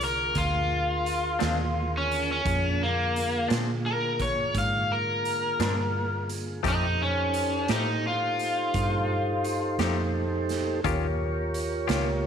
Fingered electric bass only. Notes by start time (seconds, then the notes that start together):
Already playing: C2
0.36 D2
1.42 D#2
2.45 F2
3.51 A#2
4.55 G#2
5.60 G2
6.65 F2
7.69 A2
8.74 G2
9.79 F2
10.85 D#2
11.89 C#2